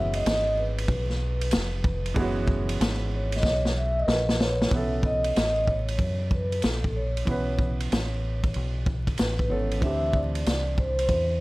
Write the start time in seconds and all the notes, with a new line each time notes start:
Already playing: F#1 E3 G#3 B3 C#4 F#4 E5
0.13 D#5, ride
0.26 G#1, snare, hi-hat pedal, ride
0.59 B4
0.78 ride
0.88 B1, kick, ride
1.09 snare
1.41 ride
1.51 F1, snare, hi-hat pedal, ride
1.84 kick
2.06 ride
2.14 F#1 E3 G#3 B3, kick, ride
2.19 C#4 F#4
2.48 kick
2.69 ride
2.81 G#1, snare, hi-hat pedal, ride
3.16 C#5
3.32 ride
3.37 D#5
3.43 B1 C#5, kick, snare
3.65 snare
3.78 E5
3.99 D#5
4.06 A#1 A#4, snare
4.12 B4
4.29 B4, snare
4.40 C#5, snare
4.62 snare
4.69 B1 E3 B3, kick, ride
4.74 C#4 A4 E5
5.03 D#5, kick
5.24 ride
5.36 A1, snare, hi-hat pedal, ride
5.68 C#5, kick
5.88 ride
5.99 F#2, kick, ride
6.31 B4, kick
6.52 ride
6.62 A#1 A4, snare, hi-hat pedal, ride
6.84 kick
6.96 C#5
7.17 ride
7.25 B1 E3 B3, kick, ride
7.29 C#4 B4
7.59 kick
7.80 ride
7.92 A1, snare, hi-hat pedal, ride
8.44 kick, ride
8.54 B1, ride
8.86 kick
9.07 kick, ride
9.18 A1 B4, snare, hi-hat pedal, ride
9.39 kick
9.48 G#1 E3 B3 C#4 A4 C#5
9.71 ride
9.79 D2 E3 C4, kick, ride
9.83 D4 G4 E5
10.13 D5, kick
10.35 ride
10.46 C2, snare, hi-hat pedal, ride
10.78 C5, kick
10.99 ride
11.09 E2, kick, ride